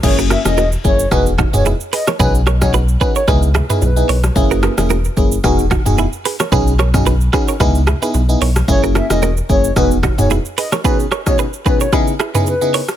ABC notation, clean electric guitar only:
X:1
M:4/4
L:1/16
Q:"Swing 16ths" 1/4=111
K:B
V:1 name="Clean electric guitar"
z [FA] [FA] z [FA]2 z4 [DF] z [EG] z [GB] [Ac] | [GB] z [Ac] z [GB] z [GB] [Ac] [GB] z [EG] [GB] z2 [Ac] z | z [FA] [FA] z [FA]2 z4 [DF] z [EG] z [GB] [Ac] | [GB] z [Ac] z [GB] z [GB] [Ac] [GB] z [EG] [GB] z2 [Ac] z |
z [FA] [FA] z [FA]2 z4 [DF] z [EG] z [GB] [Ac] | [GB] z [Ac] z [GB] z [GB] [Ac] [GB] z [EG] [GB] z2 [Ac] z |]